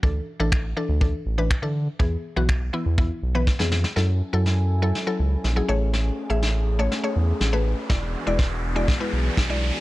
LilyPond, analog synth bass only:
\new Staff \with { instrumentName = "Analog synth bass" } { \clef bass \time 4/4 \key e \mixolydian \tempo 4 = 122 d,8 r16 a,,4 d,8. a,,8. d8. | e,8 r16 b,,4 e,8. b,,8. f,8. | fis,8. fis,4.~ fis,16 cis,8 bes,,8 a,,8~ | a,,8. a,,4.~ a,,16 e,8 a,,4 |
e,,8. e,,4.~ e,,16 b,,8 b,,4 | }